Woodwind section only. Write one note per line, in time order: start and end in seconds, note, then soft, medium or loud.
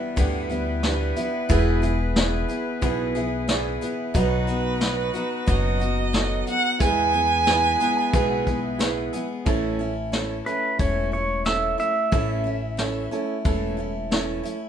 0.00 1.47 G3 medium
0.00 1.47 D4 medium
0.00 4.11 E4 medium
0.00 4.11 B4 medium
1.49 4.12 E3 medium
1.49 4.12 G#4 medium
4.15 6.63 B3 medium
4.15 6.63 D#4 medium
4.15 6.63 F#4 medium
6.80 9.43 E3 medium
6.80 9.43 E4 medium
6.80 9.43 G#4 medium
6.80 9.43 B4 medium